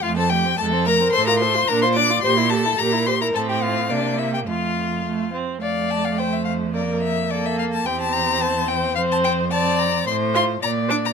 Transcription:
X:1
M:2/4
L:1/16
Q:1/4=108
K:F
V:1 name="Violin"
f a g2 a2 b2 | c' b c'2 b c' d'2 | c'2 a2 b2 c' b | a g f2 d2 e g |
f6 z2 | f2 a f g e f2 | d2 e2 d e f a | g a b2 a2 g2 |
f a g2 a2 b2 | c'2 c'2 b2 d' b |]
V:2 name="Violin"
F A G2 A2 B2 | c B c2 B c d2 | c2 A2 B2 c B | A G F2 D2 E G |
F6 z2 | d4 c4 | B4 A4 | G4 c4 |
c4 d4 | c4 d4 |]
V:3 name="Viola"
A, C A, C A, C A, C | A F A F D F D F | G E G E G E G E | C4 B,4 |
A,4 A,2 C2 | A,8 | B,4 B,4 | C8 |
C4 C4 | z2 F z3 D z |]
V:4 name="Cello" clef=bass
F,,4 F,,4 | A,,4 B,,4 | B,,4 B,,4 | A,,4 C,4 |
F,,6 z2 | F,,8- | F,,8 | E,,8 |
F,,8 | A,,4 B,,4 |]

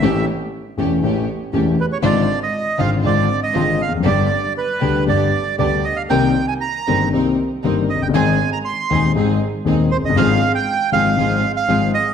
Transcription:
X:1
M:4/4
L:1/16
Q:1/4=119
K:Cm
V:1 name="Bandoneon"
=e2 z12 =B ^c | d3 e3 f2 d3 e3 f2 | d4 =B4 d4 d2 e f | g3 a b4 z6 e g |
a3 b c'4 z6 c e | f3 g3 f4- f f3 e2 |]
V:2 name="String section"
[=A,^CG]2 z4 [A,CG]2 [A,CG]2 z2 [A,CG]2 z2 | [A,,CDF]2 z4 [A,,CDF]2 [A,,CDF]2 z2 [A,,CDF]2 z2 | [=B,DG]2 z4 [B,DG]2 [B,DG]2 z2 [B,DG]2 z2 | [CEB]2 z4 [CEB]2 [CEB]2 z2 [CEB]2 z2 |
[CEA]2 z4 [CEA]2 [CEA]2 z2 [CEA]2 z2 | [A,,CFA]2 z4 [A,,CFA]2 [A,,CFA]2 z2 [A,,CFA]2 z2 |]
V:3 name="Grand piano" clef=bass
[=A,,,=A,,=E,=A,^CG]2 z4 [=E,,,=E,,E,A,CG]2 [A,,,A,,E,A,CG]2 z2 [E,,,E,,E,A,CG]2 z2 | [A,,,A,,D,A,CF]2 z4 [A,,,A,,D,A,CF]2 [A,,,A,,D,A,CF]2 z2 [A,,,A,,D,A,CF]2 z/2 =E,,/2 F,,/2 ^F,,/2 | [G,,,G,,D,G,=B,G]2 z4 [D,,D,G,B,G]2 [G,,,G,,D,G,B,G]2 z2 [D,,D,G,B,G]2 z2 | [C,,C,E,B,CG]2 z4 [G,,,G,,E,B,CG]2 [C,,C,E,B,CG]2 z2 [G,,,G,,E,B,CG]2 z/2 F,,,/2 ^F,,,/2 G,,,/2 |
[A,,,A,,E,A,CA]2 z4 [E,,,E,,E,A,CA]2 [A,,,A,,E,A,CA]2 z2 [E,,,E,,E,A,CA]2 z/2 F,,,/2 ^F,,,/2 G,,,/2 | [A,,,A,,F,A,CA]2 z4 [A,,,A,,F,A,CA]2 [A,,,A,,F,A,CA]2 z2 [A,,,A,,F,A,CA]2 z2 |]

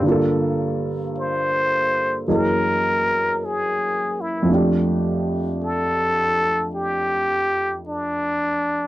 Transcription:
X:1
M:4/4
L:1/8
Q:"Swing" 1/4=54
K:F
V:1 name="Muted trumpet"
z2 c2 B2 _A _F | z2 A2 G2 D2 |]
V:2 name="Upright piano"
[G,,D,B,FA]4 [_G,,_F,B,_A_e]4 | [F,,F,A,DG]8 |]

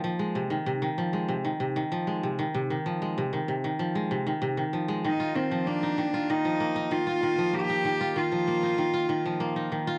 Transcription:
X:1
M:4/4
L:1/16
Q:1/4=96
K:Fdor
V:1 name="Cello"
z16 | z16 | E2 C2 D4 E4 F4 | G4 F8- F2 z2 |]
V:2 name="Kora" clef=bass
F, A, C, E, C, E, F, A, C, E, C, E, F, A, C, E, | C, E, F, A, C, E, C, E, F, A, C, E, C, E, F, A, | E, F E, F, B, E E, F E, F, B, E E, F E, F, | B, E E, F E, F, B, E E, F E, F, B, E E, F |]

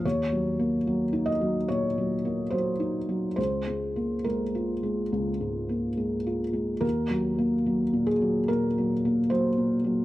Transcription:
X:1
M:4/4
L:1/8
Q:1/4=72
K:Ebdor
V:1 name="Felt piano"
d3 e d2 c2 | c2 B4- B z | B3 A B2 c2 |]
V:2 name="Felt piano" clef=bass
(3E,, G, B, (3G, E G, (3B,, G, B, (3G, E G, | (3D,, A, B, (3A, F A, (3D,, A,, B, (3A, F A, | (3E,, G, B, (3G, B,, G, (3B,, G, B, (3G, B,, G, |]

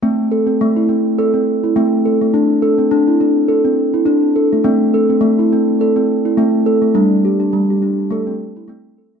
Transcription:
X:1
M:4/4
L:1/16
Q:"Swing 16ths" 1/4=104
K:Am
V:1 name="Steel tongue drum"
C2 A C2 E C2 A C2 E C2 A A, | z2 A C2 E D2 A C2 E z2 A A, | C2 A C2 E C2 A C2 E C2 A A, | D2 G D2 G D2 A C2 E C2 A A, |]
V:2 name="Steel tongue drum"
A,4 A,2 z6 A,2 z2 | D4 D2 z6 D2 z2 | A,4 A,2 z6 A,2 z2 | G,4 G,2 z2 A,4 A,2 z2 |]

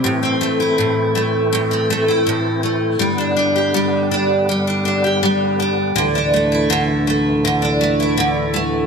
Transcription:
X:1
M:4/4
L:1/16
Q:1/4=81
K:Am
V:1 name="Steel-string acoustic guitar"
A,, C A, E A,,2 A,2 A,, C A, E A,,2 A,2 | G, D D G G,2 D2 G, D D G G,2 D2 | D, D A, E D,2 A,2 D, D A, E D,2 A,2 |]
V:2 name="Tonewheel organ" clef=bass
[A,,E,C]16 | [G,,D,B,]16 | [D,,A,,E,]16 |]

